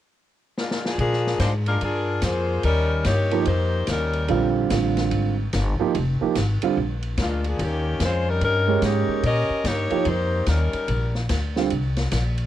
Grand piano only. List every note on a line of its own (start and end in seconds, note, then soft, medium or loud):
3.32 3.45 F3 medium
3.32 3.45 A#3 medium
3.32 3.46 D#4 medium
3.32 3.46 G4 medium
4.29 4.69 D3 medium
4.29 4.69 G3 medium
4.29 4.69 C4 medium
4.29 4.69 F4 medium
4.70 5.33 D3 medium
4.70 5.33 G3 soft
4.70 5.34 C4 soft
4.70 5.34 F4 medium
5.80 5.93 F3 medium
5.80 5.93 A#3 medium
5.80 5.93 D#4 medium
5.80 5.94 G4 medium
6.21 6.34 F3 medium
6.21 6.34 A#3 medium
6.21 6.35 D#4 medium
6.21 6.35 G4 medium
6.63 6.76 D3 medium
6.63 6.76 G3 medium
6.63 6.76 C4 medium
6.63 6.76 F4 medium
8.68 9.21 G#3 medium
8.68 9.21 C#4 medium
8.68 9.21 G4 medium
8.68 9.22 A#4 medium
9.91 10.04 F3 medium
9.91 10.05 A#3 soft
9.91 10.05 D#4 soft
9.91 10.05 G4 medium
11.56 11.69 D3 soft
11.56 11.70 G3 soft
11.56 11.70 C4 soft
11.56 11.70 F4 medium